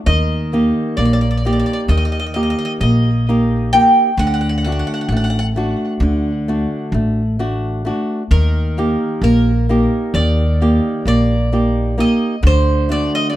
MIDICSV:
0, 0, Header, 1, 4, 480
1, 0, Start_track
1, 0, Tempo, 916031
1, 34, Time_signature, 9, 3, 24, 8
1, 7002, End_track
2, 0, Start_track
2, 0, Title_t, "Bouzouki"
2, 0, Program_c, 0, 25
2, 33, Note_on_c, 0, 75, 90
2, 491, Note_off_c, 0, 75, 0
2, 508, Note_on_c, 0, 74, 82
2, 545, Note_off_c, 0, 74, 0
2, 552, Note_on_c, 0, 74, 61
2, 587, Note_off_c, 0, 74, 0
2, 593, Note_on_c, 0, 74, 70
2, 629, Note_off_c, 0, 74, 0
2, 634, Note_on_c, 0, 74, 55
2, 669, Note_off_c, 0, 74, 0
2, 685, Note_on_c, 0, 74, 57
2, 715, Note_off_c, 0, 74, 0
2, 720, Note_on_c, 0, 74, 50
2, 752, Note_off_c, 0, 74, 0
2, 768, Note_on_c, 0, 74, 56
2, 793, Note_off_c, 0, 74, 0
2, 800, Note_on_c, 0, 74, 55
2, 829, Note_off_c, 0, 74, 0
2, 835, Note_on_c, 0, 74, 60
2, 864, Note_off_c, 0, 74, 0
2, 870, Note_on_c, 0, 74, 55
2, 902, Note_off_c, 0, 74, 0
2, 908, Note_on_c, 0, 74, 59
2, 944, Note_off_c, 0, 74, 0
2, 992, Note_on_c, 0, 75, 85
2, 1028, Note_off_c, 0, 75, 0
2, 1035, Note_on_c, 0, 75, 65
2, 1068, Note_off_c, 0, 75, 0
2, 1074, Note_on_c, 0, 75, 63
2, 1105, Note_off_c, 0, 75, 0
2, 1111, Note_on_c, 0, 75, 58
2, 1144, Note_off_c, 0, 75, 0
2, 1150, Note_on_c, 0, 75, 64
2, 1181, Note_off_c, 0, 75, 0
2, 1187, Note_on_c, 0, 75, 48
2, 1220, Note_off_c, 0, 75, 0
2, 1226, Note_on_c, 0, 75, 61
2, 1264, Note_off_c, 0, 75, 0
2, 1272, Note_on_c, 0, 75, 58
2, 1304, Note_off_c, 0, 75, 0
2, 1311, Note_on_c, 0, 75, 66
2, 1346, Note_off_c, 0, 75, 0
2, 1355, Note_on_c, 0, 75, 58
2, 1382, Note_off_c, 0, 75, 0
2, 1388, Note_on_c, 0, 75, 69
2, 1424, Note_off_c, 0, 75, 0
2, 1472, Note_on_c, 0, 75, 86
2, 1929, Note_off_c, 0, 75, 0
2, 1953, Note_on_c, 0, 79, 102
2, 2175, Note_off_c, 0, 79, 0
2, 2197, Note_on_c, 0, 78, 92
2, 2230, Note_off_c, 0, 78, 0
2, 2237, Note_on_c, 0, 78, 68
2, 2267, Note_off_c, 0, 78, 0
2, 2273, Note_on_c, 0, 78, 71
2, 2304, Note_off_c, 0, 78, 0
2, 2310, Note_on_c, 0, 78, 61
2, 2346, Note_off_c, 0, 78, 0
2, 2354, Note_on_c, 0, 78, 67
2, 2388, Note_off_c, 0, 78, 0
2, 2398, Note_on_c, 0, 78, 53
2, 2427, Note_off_c, 0, 78, 0
2, 2434, Note_on_c, 0, 78, 71
2, 2467, Note_off_c, 0, 78, 0
2, 2474, Note_on_c, 0, 78, 58
2, 2505, Note_off_c, 0, 78, 0
2, 2512, Note_on_c, 0, 78, 65
2, 2546, Note_off_c, 0, 78, 0
2, 2551, Note_on_c, 0, 78, 56
2, 2581, Note_off_c, 0, 78, 0
2, 2587, Note_on_c, 0, 78, 58
2, 2620, Note_off_c, 0, 78, 0
2, 2626, Note_on_c, 0, 78, 52
2, 2659, Note_off_c, 0, 78, 0
2, 2665, Note_on_c, 0, 78, 66
2, 2701, Note_off_c, 0, 78, 0
2, 2707, Note_on_c, 0, 78, 60
2, 2739, Note_off_c, 0, 78, 0
2, 2746, Note_on_c, 0, 78, 66
2, 2771, Note_off_c, 0, 78, 0
2, 2777, Note_on_c, 0, 78, 60
2, 2817, Note_off_c, 0, 78, 0
2, 2824, Note_on_c, 0, 78, 75
2, 2860, Note_off_c, 0, 78, 0
2, 4356, Note_on_c, 0, 70, 84
2, 4835, Note_off_c, 0, 70, 0
2, 4841, Note_on_c, 0, 70, 88
2, 5314, Note_off_c, 0, 70, 0
2, 5316, Note_on_c, 0, 74, 89
2, 5774, Note_off_c, 0, 74, 0
2, 5805, Note_on_c, 0, 74, 92
2, 6259, Note_off_c, 0, 74, 0
2, 6290, Note_on_c, 0, 75, 96
2, 6506, Note_off_c, 0, 75, 0
2, 6533, Note_on_c, 0, 72, 97
2, 6766, Note_off_c, 0, 72, 0
2, 6768, Note_on_c, 0, 74, 95
2, 6874, Note_off_c, 0, 74, 0
2, 6890, Note_on_c, 0, 75, 85
2, 6961, Note_off_c, 0, 75, 0
2, 6968, Note_on_c, 0, 74, 65
2, 6999, Note_off_c, 0, 74, 0
2, 7002, End_track
3, 0, Start_track
3, 0, Title_t, "Nylon-string guitar"
3, 0, Program_c, 1, 24
3, 38, Note_on_c, 1, 51, 65
3, 278, Note_on_c, 1, 58, 47
3, 282, Note_on_c, 1, 63, 47
3, 282, Note_on_c, 1, 67, 54
3, 500, Note_off_c, 1, 51, 0
3, 512, Note_off_c, 1, 58, 0
3, 518, Note_on_c, 1, 58, 59
3, 660, Note_off_c, 1, 63, 0
3, 661, Note_off_c, 1, 67, 0
3, 754, Note_off_c, 1, 58, 0
3, 760, Note_on_c, 1, 58, 49
3, 763, Note_on_c, 1, 63, 42
3, 766, Note_on_c, 1, 67, 54
3, 998, Note_on_c, 1, 51, 57
3, 1140, Note_off_c, 1, 58, 0
3, 1141, Note_off_c, 1, 63, 0
3, 1143, Note_off_c, 1, 67, 0
3, 1234, Note_on_c, 1, 58, 43
3, 1237, Note_on_c, 1, 63, 41
3, 1238, Note_on_c, 1, 67, 50
3, 1459, Note_off_c, 1, 51, 0
3, 1476, Note_off_c, 1, 58, 0
3, 1482, Note_on_c, 1, 58, 63
3, 1617, Note_off_c, 1, 63, 0
3, 1618, Note_off_c, 1, 67, 0
3, 1716, Note_off_c, 1, 58, 0
3, 1722, Note_on_c, 1, 58, 47
3, 1725, Note_on_c, 1, 63, 47
3, 1729, Note_on_c, 1, 67, 51
3, 1950, Note_off_c, 1, 58, 0
3, 1954, Note_off_c, 1, 63, 0
3, 1956, Note_off_c, 1, 67, 0
3, 1957, Note_on_c, 1, 58, 51
3, 1960, Note_on_c, 1, 63, 47
3, 1962, Note_on_c, 1, 67, 57
3, 2146, Note_off_c, 1, 58, 0
3, 2148, Note_off_c, 1, 63, 0
3, 2149, Note_off_c, 1, 67, 0
3, 2197, Note_on_c, 1, 50, 67
3, 2441, Note_on_c, 1, 57, 49
3, 2444, Note_on_c, 1, 62, 43
3, 2448, Note_on_c, 1, 66, 52
3, 2659, Note_off_c, 1, 50, 0
3, 2678, Note_off_c, 1, 57, 0
3, 2685, Note_on_c, 1, 57, 61
3, 2822, Note_off_c, 1, 62, 0
3, 2825, Note_off_c, 1, 66, 0
3, 2907, Note_off_c, 1, 57, 0
3, 2913, Note_on_c, 1, 57, 50
3, 2920, Note_on_c, 1, 62, 45
3, 2920, Note_on_c, 1, 66, 50
3, 3157, Note_on_c, 1, 50, 55
3, 3296, Note_off_c, 1, 57, 0
3, 3300, Note_off_c, 1, 62, 0
3, 3300, Note_off_c, 1, 66, 0
3, 3397, Note_on_c, 1, 57, 50
3, 3400, Note_on_c, 1, 62, 43
3, 3401, Note_on_c, 1, 66, 48
3, 3619, Note_off_c, 1, 50, 0
3, 3633, Note_off_c, 1, 57, 0
3, 3639, Note_on_c, 1, 57, 66
3, 3779, Note_off_c, 1, 62, 0
3, 3781, Note_off_c, 1, 66, 0
3, 3868, Note_off_c, 1, 57, 0
3, 3874, Note_on_c, 1, 57, 46
3, 3878, Note_on_c, 1, 62, 46
3, 3878, Note_on_c, 1, 66, 53
3, 4106, Note_off_c, 1, 57, 0
3, 4113, Note_on_c, 1, 57, 49
3, 4114, Note_off_c, 1, 62, 0
3, 4115, Note_off_c, 1, 66, 0
3, 4120, Note_on_c, 1, 62, 46
3, 4122, Note_on_c, 1, 66, 60
3, 4304, Note_off_c, 1, 57, 0
3, 4308, Note_off_c, 1, 62, 0
3, 4309, Note_off_c, 1, 66, 0
3, 4357, Note_on_c, 1, 51, 67
3, 4600, Note_on_c, 1, 58, 51
3, 4601, Note_on_c, 1, 63, 45
3, 4604, Note_on_c, 1, 67, 59
3, 4820, Note_off_c, 1, 51, 0
3, 4831, Note_off_c, 1, 58, 0
3, 4838, Note_on_c, 1, 58, 63
3, 4981, Note_off_c, 1, 63, 0
3, 4982, Note_off_c, 1, 67, 0
3, 5073, Note_off_c, 1, 58, 0
3, 5079, Note_on_c, 1, 58, 52
3, 5082, Note_on_c, 1, 63, 49
3, 5086, Note_on_c, 1, 67, 54
3, 5320, Note_on_c, 1, 51, 58
3, 5461, Note_off_c, 1, 58, 0
3, 5463, Note_off_c, 1, 63, 0
3, 5465, Note_off_c, 1, 67, 0
3, 5563, Note_on_c, 1, 58, 48
3, 5564, Note_on_c, 1, 63, 44
3, 5565, Note_on_c, 1, 67, 51
3, 5783, Note_off_c, 1, 51, 0
3, 5792, Note_off_c, 1, 58, 0
3, 5798, Note_on_c, 1, 58, 64
3, 5943, Note_off_c, 1, 63, 0
3, 5944, Note_off_c, 1, 67, 0
3, 6033, Note_off_c, 1, 58, 0
3, 6039, Note_on_c, 1, 58, 50
3, 6041, Note_on_c, 1, 63, 47
3, 6044, Note_on_c, 1, 67, 50
3, 6271, Note_off_c, 1, 58, 0
3, 6272, Note_off_c, 1, 63, 0
3, 6272, Note_off_c, 1, 67, 0
3, 6276, Note_on_c, 1, 58, 53
3, 6279, Note_on_c, 1, 63, 51
3, 6282, Note_on_c, 1, 67, 52
3, 6468, Note_off_c, 1, 58, 0
3, 6469, Note_off_c, 1, 63, 0
3, 6469, Note_off_c, 1, 67, 0
3, 6511, Note_on_c, 1, 50, 64
3, 6754, Note_on_c, 1, 57, 48
3, 6758, Note_on_c, 1, 62, 44
3, 6760, Note_on_c, 1, 66, 53
3, 6979, Note_off_c, 1, 50, 0
3, 6980, Note_off_c, 1, 57, 0
3, 7002, Note_off_c, 1, 62, 0
3, 7002, Note_off_c, 1, 66, 0
3, 7002, End_track
4, 0, Start_track
4, 0, Title_t, "Upright bass"
4, 0, Program_c, 2, 32
4, 34, Note_on_c, 2, 39, 98
4, 369, Note_off_c, 2, 39, 0
4, 512, Note_on_c, 2, 34, 78
4, 847, Note_off_c, 2, 34, 0
4, 987, Note_on_c, 2, 39, 93
4, 1324, Note_off_c, 2, 39, 0
4, 1469, Note_on_c, 2, 34, 83
4, 1973, Note_off_c, 2, 34, 0
4, 2187, Note_on_c, 2, 38, 101
4, 2524, Note_off_c, 2, 38, 0
4, 2664, Note_on_c, 2, 33, 84
4, 3002, Note_off_c, 2, 33, 0
4, 3144, Note_on_c, 2, 38, 95
4, 3482, Note_off_c, 2, 38, 0
4, 3626, Note_on_c, 2, 33, 84
4, 4132, Note_off_c, 2, 33, 0
4, 4353, Note_on_c, 2, 39, 99
4, 4689, Note_off_c, 2, 39, 0
4, 4829, Note_on_c, 2, 34, 88
4, 5166, Note_off_c, 2, 34, 0
4, 5312, Note_on_c, 2, 39, 97
4, 5649, Note_off_c, 2, 39, 0
4, 5792, Note_on_c, 2, 34, 80
4, 6297, Note_off_c, 2, 34, 0
4, 6514, Note_on_c, 2, 38, 108
4, 6851, Note_off_c, 2, 38, 0
4, 7002, End_track
0, 0, End_of_file